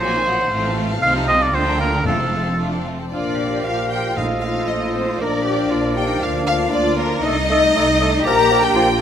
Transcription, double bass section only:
0, 0, Header, 1, 2, 480
1, 0, Start_track
1, 0, Key_signature, -2, "major"
1, 0, Tempo, 507614
1, 11, Time_signature, 2, 2, 24, 8
1, 1452, Tempo, 524934
1, 4812, Tempo, 508475
1, 8403, End_track
2, 0, Start_track
2, 0, Title_t, "Double bass section"
2, 0, Program_c, 0, 48
2, 0, Note_on_c, 0, 34, 59
2, 460, Note_off_c, 0, 34, 0
2, 495, Note_on_c, 0, 33, 68
2, 960, Note_off_c, 0, 33, 0
2, 965, Note_on_c, 0, 36, 69
2, 1439, Note_off_c, 0, 36, 0
2, 1449, Note_on_c, 0, 38, 71
2, 1921, Note_off_c, 0, 38, 0
2, 1932, Note_on_c, 0, 29, 61
2, 2724, Note_off_c, 0, 29, 0
2, 2907, Note_on_c, 0, 34, 45
2, 3331, Note_off_c, 0, 34, 0
2, 3386, Note_on_c, 0, 34, 53
2, 3804, Note_off_c, 0, 34, 0
2, 3856, Note_on_c, 0, 34, 49
2, 4278, Note_off_c, 0, 34, 0
2, 4339, Note_on_c, 0, 34, 56
2, 4758, Note_off_c, 0, 34, 0
2, 4815, Note_on_c, 0, 34, 59
2, 5237, Note_off_c, 0, 34, 0
2, 5293, Note_on_c, 0, 34, 68
2, 5716, Note_off_c, 0, 34, 0
2, 5776, Note_on_c, 0, 38, 68
2, 6192, Note_off_c, 0, 38, 0
2, 6249, Note_on_c, 0, 38, 75
2, 6683, Note_off_c, 0, 38, 0
2, 6738, Note_on_c, 0, 36, 69
2, 7164, Note_off_c, 0, 36, 0
2, 7223, Note_on_c, 0, 36, 77
2, 7642, Note_off_c, 0, 36, 0
2, 7697, Note_on_c, 0, 34, 69
2, 8116, Note_off_c, 0, 34, 0
2, 8167, Note_on_c, 0, 34, 74
2, 8403, Note_off_c, 0, 34, 0
2, 8403, End_track
0, 0, End_of_file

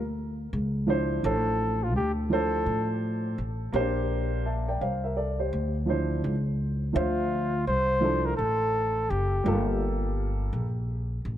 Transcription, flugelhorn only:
0, 0, Header, 1, 2, 480
1, 0, Start_track
1, 0, Key_signature, -1, "minor"
1, 0, Tempo, 714286
1, 836, Time_signature, 4, 2, 24, 8
1, 7645, End_track
2, 0, Start_track
2, 0, Title_t, "Flugelhorn"
2, 0, Program_c, 0, 56
2, 844, Note_on_c, 0, 69, 105
2, 1233, Note_on_c, 0, 65, 88
2, 1243, Note_off_c, 0, 69, 0
2, 1314, Note_off_c, 0, 65, 0
2, 1318, Note_on_c, 0, 67, 88
2, 1426, Note_off_c, 0, 67, 0
2, 1571, Note_on_c, 0, 69, 100
2, 2016, Note_off_c, 0, 69, 0
2, 4686, Note_on_c, 0, 65, 97
2, 5134, Note_off_c, 0, 65, 0
2, 5158, Note_on_c, 0, 72, 105
2, 5549, Note_on_c, 0, 70, 82
2, 5559, Note_off_c, 0, 72, 0
2, 5622, Note_off_c, 0, 70, 0
2, 5626, Note_on_c, 0, 69, 106
2, 6116, Note_on_c, 0, 67, 86
2, 6126, Note_off_c, 0, 69, 0
2, 6511, Note_off_c, 0, 67, 0
2, 7645, End_track
0, 0, End_of_file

